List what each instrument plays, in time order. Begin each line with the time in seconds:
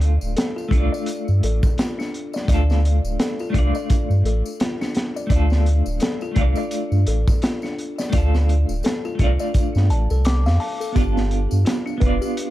Already playing: sub bass D2, clean electric guitar A3 D4 F4 A4
0.01 closed hi-hat
0.21 sub bass D1, tambourine
0.37 music box A4, snare, closed hi-hat, tambourine
0.56 music box F4, tambourine
0.69 sub bass C2, clean electric guitar A3 D4, music box D4, kick, closed hi-hat
0.75 clean electric guitar F4 D5
0.92 music box D5, tambourine
1.06 closed hi-hat, tambourine
1.28 sub bass G2, tambourine
1.43 sub bass A1, music box A4, closed hi-hat
1.63 kick, tambourine
1.78 music box F4, snare, closed hi-hat, tambourine
1.99 music box D4, snare, tambourine
2.14 closed hi-hat
2.33 music box D5, snare, tambourine
2.45 sub bass D2, clean electric guitar A3 D4, kick, tambourine
2.49 clean electric guitar F4, music box D5, closed hi-hat
2.54 clean electric guitar A4
2.70 snare, tambourine
2.85 closed hi-hat
3.04 sub bass D1, tambourine
3.19 music box A4, snare, closed hi-hat, tambourine
3.39 music box F4, tambourine
3.50 clean electric guitar A3 D4
3.54 sub bass C2, music box D4, clean electric guitar F4, kick, closed hi-hat
3.59 clean electric guitar D5
3.75 music box D5, tambourine
3.90 kick, closed hi-hat, tambourine
4.10 sub bass G2, tambourine
4.25 sub bass A1, music box A4, closed hi-hat
4.46 tambourine
4.60 music box F4, snare, closed hi-hat, tambourine
4.81 music box D4, snare, tambourine
4.95 snare, closed hi-hat
5.16 music box D5, tambourine
5.27 sub bass D2, clean electric guitar A3 D4, kick, closed hi-hat, tambourine
5.31 clean electric guitar F4, music box D5
5.36 clean electric guitar A4
5.50 snare, tambourine
5.66 closed hi-hat
5.86 sub bass D1, tambourine
6.00 music box A4, snare, closed hi-hat, tambourine
6.21 music box F4, tambourine
6.31 clean electric guitar A3 D4
6.36 sub bass C2, music box D4, clean electric guitar F4, kick, closed hi-hat
6.41 clean electric guitar D5
6.55 music box D5, tambourine
6.71 closed hi-hat, tambourine
6.92 sub bass G2, tambourine
7.07 sub bass A1, music box A4, closed hi-hat
7.28 kick, tambourine
7.42 music box F4, snare, closed hi-hat, tambourine
7.62 music box D4, snare, tambourine
7.79 closed hi-hat
7.98 music box D5, snare, tambourine
8.09 clean electric guitar A3 D4, music box D5, kick, closed hi-hat, tambourine
8.14 sub bass D2, clean electric guitar F4
8.18 clean electric guitar A4
8.34 snare, tambourine
8.49 closed hi-hat
8.69 sub bass D1, tambourine
8.83 music box A4, snare, closed hi-hat, tambourine
9.05 music box F4, tambourine
9.15 clean electric guitar A3 D4, closed hi-hat
9.19 sub bass C2, music box D4, clean electric guitar F4, kick
9.24 clean electric guitar D5
9.39 music box D5, tambourine
9.54 kick, closed hi-hat, tambourine
9.75 sub bass G2, snare, tambourine
9.90 sub bass A1, music box A5, closed hi-hat
10.10 sub bass C2, music box A4, tambourine
10.24 music box D6, snare, closed hi-hat, tambourine
10.45 sub bass F2, music box F5, snare, tambourine
10.60 music box A5, open hi-hat
10.80 music box A4, tambourine
10.92 sub bass G1, clean electric guitar B3 D4, music box G4, kick, closed hi-hat, tambourine
10.98 clean electric guitar F4 A4
11.17 snare, tambourine
11.31 closed hi-hat
11.51 sub bass G2, tambourine
11.65 music box F4, snare, closed hi-hat, tambourine
11.86 music box D4, tambourine
11.98 clean electric guitar B3 D4, music box B4, kick, closed hi-hat
12.02 sub bass F1, clean electric guitar F4
12.06 clean electric guitar D5
12.21 music box G4, tambourine
12.37 closed hi-hat, tambourine